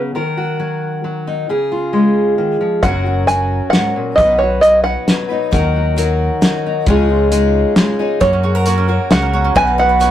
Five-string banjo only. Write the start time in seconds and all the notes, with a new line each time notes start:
2.83 F#5
3.27 G#5
3.70 F#5
4.16 D#5
4.39 C#5
4.61 D#5
4.84 F#5
8.21 C#5
9.12 F#5
9.57 G#5
9.79 F#5